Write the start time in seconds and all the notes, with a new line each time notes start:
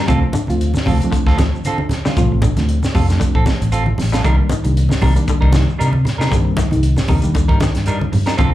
0.07 D2 C3 F3 A3 C4 D4 F4 A4, kick, closed hi-hat, low conga, shekere
0.22 muted clean electric guitar stroke
0.33 D3, muted fingered electric bass stroke, closed hi-hat, high conga, shekere
0.47 D2 F3 A3 C4 F4, muted clean electric guitar stroke, closed hi-hat, high conga, shekere
0.61 closed hi-hat
0.74 muted clean electric guitar stroke, snare, high conga, shekere
0.86 D2 C3 F3 A3 C4 F4 A4, kick, open hi-hat, low conga, shekere
1.00 F3 A3 D4, muted clean electric guitar stroke, closed hi-hat, shekere
1.05 C4
1.12 D3, muted clean electric guitar stroke, muted fingered electric bass stroke, kick, closed hi-hat, shekere
1.26 D2 C4 F4 A4, kick, snare
1.38 F3, muted clean electric guitar stroke, snare, closed hi-hat, high conga, shekere
1.55 shekere
1.65 D3 C4 F4 A4, closed hi-hat, shekere
1.78 muted clean electric guitar stroke, high conga
1.89 muted clean electric guitar stroke, snare, closed hi-hat, high conga, low conga, shekere
2.05 D3 G3 F4, muted clean electric guitar stroke, snare, shekere
2.17 A1 C3 F3 A3 C4 F4, kick, closed hi-hat, shekere
2.32 muted clean electric guitar stroke
2.42 D3, kick, closed hi-hat, high conga, low conga, shekere
2.56 D2 F3 A3 C4 D4, muted clean electric guitar stroke, snare, closed hi-hat, high conga, shekere
2.69 closed hi-hat
2.83 muted clean electric guitar stroke, snare, high conga, shekere
2.94 F2 C3 F3 A3 C4 D4 F4 A4, muted clean electric guitar stroke, kick, open hi-hat, low conga, shekere
3.09 F3 A3 C4 D4, muted clean electric guitar stroke, snare, closed hi-hat, shekere
3.20 D3, muted clean electric guitar stroke, kick, closed hi-hat, high conga, shekere
3.35 A1 C4 A4, muted clean electric guitar stroke, kick
3.46 muted clean electric guitar stroke, kick, snare, closed hi-hat, high conga, shekere
3.61 A1, closed hi-hat, shekere
3.72 C4 F4 A4, closed hi-hat, shekere
3.86 muted clean electric guitar stroke, high conga
3.98 A1, muted clean electric guitar stroke, snare, open hi-hat, low conga, shekere
4.12 G3 F4 A4, snare, closed hi-hat, shekere
4.24 C2 D3 D#3 G3 A#3 D4 D#4 A#4, kick, closed hi-hat, shekere
4.38 muted clean electric guitar stroke
4.50 D#3, muted fingered electric bass stroke, closed hi-hat, high conga, shekere
4.64 C2 D#3 G3 A#3 D4, muted clean electric guitar stroke, closed hi-hat, shekere
4.77 closed hi-hat
4.89 muted clean electric guitar stroke, snare, high conga, shekere
5.01 C2 C3 D#3 G3 A#3 D4 D#4 A#4, kick, open hi-hat, low conga, shekere
5.15 D#3 G3 A#3 D4, muted clean electric guitar stroke, closed hi-hat, shekere
5.28 D3, muted clean electric guitar stroke, muted fingered electric bass stroke, kick, closed hi-hat, shekere
5.41 C2 G3 D4 D#4 A#4, kick
5.53 D#3, snare, closed hi-hat, high conga, shekere
5.70 shekere
5.78 C3 G3 D4 D#4 A#4, closed hi-hat, shekere
5.93 muted clean electric guitar stroke, high conga
6.05 muted clean electric guitar stroke, snare, closed hi-hat, low conga, shekere
6.18 C3 G3 D4 D#4 A#4, snare, shekere
6.31 G2 D3 D#3 G3 A#3 C4, kick, closed hi-hat, low conga, shekere
6.45 muted clean electric guitar stroke
6.57 D#3, kick, snare, closed hi-hat, high conga, shekere
6.71 C2 D#3 G3 A#3 D#4, muted clean electric guitar stroke, closed hi-hat, high conga, shekere
6.83 closed hi-hat
6.96 muted clean electric guitar stroke, snare, high conga, shekere
7.07 D#2 C3 D#3 G3 A#3 D4 D#4 A#4, kick, open hi-hat, low conga, shekere
7.22 D#3 G3 A#3 D4, muted clean electric guitar stroke, closed hi-hat, shekere
7.34 D3, muted clean electric guitar stroke, kick, closed hi-hat, high conga, shekere
7.48 G2 G3 D#4 A#4, muted clean electric guitar stroke, kick
7.60 D#3, kick, snare, closed hi-hat, high conga, shekere
7.75 G2, snare, closed hi-hat, shekere
7.86 G3 D4 D#4 A#4, closed hi-hat, shekere
8.01 muted clean electric guitar stroke, high conga
8.12 G2, muted clean electric guitar stroke, open hi-hat, low conga, shekere
8.26 G3 D4 D#4 A#4, snare, closed hi-hat, shekere
8.37 D2 C3 F3 A3 C4 D4 F4 A4, kick, closed hi-hat, shekere